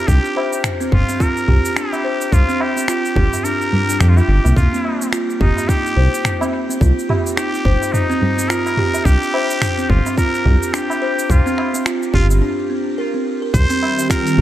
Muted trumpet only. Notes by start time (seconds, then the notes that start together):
0.07 G4
0.93 F4
1.22 A#4
1.77 G4
2.33 F4
2.61 G4
2.88 G4
3.44 A#4
4.00 G4
4.09 F4
4.17 G4
4.56 F4
5.41 D#4
5.69 G4
7.37 G4
7.93 D#4
8.49 A#4
9.05 G4
9.89 F4
10.18 A#4
10.74 G4
11.30 F4
12.14 F4
13.54 C5
14.11 A#4